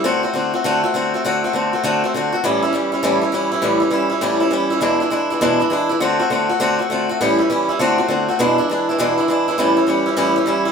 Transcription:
X:1
M:4/4
L:1/8
Q:"Swing" 1/4=201
K:D
V:1 name="Steel-string acoustic guitar"
[D,A,=CF] [A,CF] [D,A,CF] [A,CF] [D,A,CF] [A,CF] [D,A,CF] [A,CF] | [D,A,=CF] [A,CF] [D,A,CF] [A,CF] [D,A,CF] [A,CF] [D,A,CF] [A,CF] | [A,,E,G,CE] [G,CE] [E,G,CE] [G,CE] [A,,E,G,CE] [G,CE] [E,G,CE] [G,CE] | [A,,E,G,CE] [G,CE] [E,G,CE] [G,CE] [A,,E,G,CE] [G,CE] [E,G,CE] [G,CE] |
[E,,B,,E,^G,DE] [E,G,DE] [E,G,DE] [E,G,DE] [E,,B,,E,G,DE] [E,G,DE] [E,G,DE] [E,G,DE] | [D,A,=CF] [A,CF] [D,A,CF] [A,CF] [D,A,CF] [A,CF] [D,A,CF] [A,CF] | [A,,E,G,CE] [G,CE] [E,G,CE] [G,CE] [D,A,=CF] [A,CF] [D,A,CF] [A,CF] | [E,,B,,E,^G,DE] [E,G,DE] [E,G,DE] [E,G,DE] [E,,B,,E,G,DE] [E,G,DE] [E,G,DE] [E,G,DE] |
[A,,E,G,CE] [G,CE] [E,G,CE] [G,CE] [A,,E,G,CE] [G,CE] [E,G,CE] [G,CE] |]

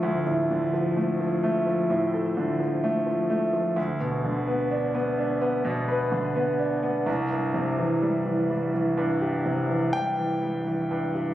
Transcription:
X:1
M:4/4
L:1/16
Q:1/4=64
K:C
V:1 name="Grand piano"
z16 | z16 | z8 z2 g6 |]
V:2 name="Grand piano" clef=bass
[D,,A,,D,F,A,A] A,, D, F, A, F, A, F, A,, A D, F, A, F, A, F, | D,, B,, D, B, D B, D B, B,, B D, B, D B, C,, G,, | C, E, G, E, G, E, G,, G C, E, G, E, G, E, G,, G |]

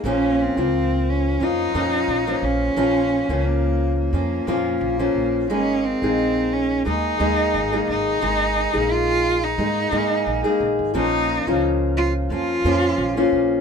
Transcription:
X:1
M:4/4
L:1/16
Q:"Swing 16ths" 1/4=88
K:Bbm
V:1 name="Cello"
D2 C4 D2 E6 D2- | D4 B,3 B,4- B, B,4 | D2 C4 D2 E6 E2- | E4 F3 E6- E z2 |
E4 z2 F2 F6 z2 |]
V:2 name="Steel-string acoustic guitar"
[B,,F,B,DF]3 [B,,F,B,F]4- [B,,F,B,F] [F,B,DF]2 [B,,F,B,DF]3 [B,,F,B,DF]3 | [B,,F,B,DF]3 [B,,F,B,DF]4- [B,,F,B,DF] [F,B,DF]2 [B,,F,B,DF]3 [B,,F,B,DF]3 | [A,B,EA]3 [A,B,EA]4- [A,B,EA] [A,B,EA]2 [A,B,EA]3 [A,B,EA]3 | [A,B,EA]3 [A,B,EA]4- [A,B,EA] [A,B,EA]2 [A,B,EA]3 [A,B,EA]3 |
[B,,F,B,DF]3 [B,,F,B,DF]4- [B,,F,B,DF] [F,B,DF]2 [B,,F,B,DF]3 [B,,F,B,DF]3 |]
V:3 name="Upright bass" clef=bass
B,,,3 D,,4- D,, F,,2 F,,2 B,,,2 B,,,2 | B,,,3 D,,4- D,, F,,2 F,,2 B,,,2 B,,,2 | A,,,3 B,,,4- B,,, E,,2 E,,2 A,,,2 A,,,2 | A,,,3 B,,,4- B,,, A,,2 A,,2 B,,, z B,,, A,,, |
B,,,3 D,,4- D,, F,,2 F,,2 B,,,2 B,,,2 |]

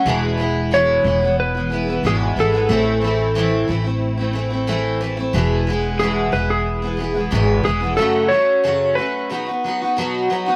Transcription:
X:1
M:4/4
L:1/16
Q:1/4=91
K:E
V:1 name="Electric slide guitar"
z4 c4 B4 G2 A2- | A6 z8 z2 | z4 G2 B G6- G G2 | A2 c4 B6 z4 |]
V:2 name="Steel-string acoustic guitar"
[E,,B,,E,G,B,E]2 [E,G,B,E]2 [E,,B,,E,G,B,E]2 [E,G,B,E] [E,G,B,E]2 [E,G,B,E] [E,G,B,E] [E,G,B,E] [E,,B,,E,G,B,E]2 [E,G,B,E] [E,G,B,E] | [A,,E,A,=CE]2 [E,A,CE]2 [A,,E,A,CE]2 [E,A,CE] [A,CE]2 [A,CE] [E,A,CE] [A,CE] [A,,E,A,CE]2 [E,CE] [A,CE] | [E,,B,,E,G,B,E]2 [E,G,B,E]2 [E,,B,,E,G,B,E]2 [E,G,B,E]3 [E,G,B,E] [E,G,B,E] [E,G,B,E] [E,,B,,E,G,B,E]2 [E,G,B,E] [E,G,B,E] | [F,,C,F,A,CF]2 [F,A,CF]2 [F,,C,F,A,CF]2 [F,A,CF]2 [B,,F,B,DF] [B,DF] [F,B,DF] [B,DF] [B,,F,B,DF]2 [F,B,DF] [B,DF] |]
V:3 name="Upright bass" clef=bass
E,,,6 E,,,6 G,,,2 G,,,2 | A,,,6 A,,,8- A,,,2 | E,,,6 E,,,6 G,,,2 E,,,2 | z16 |]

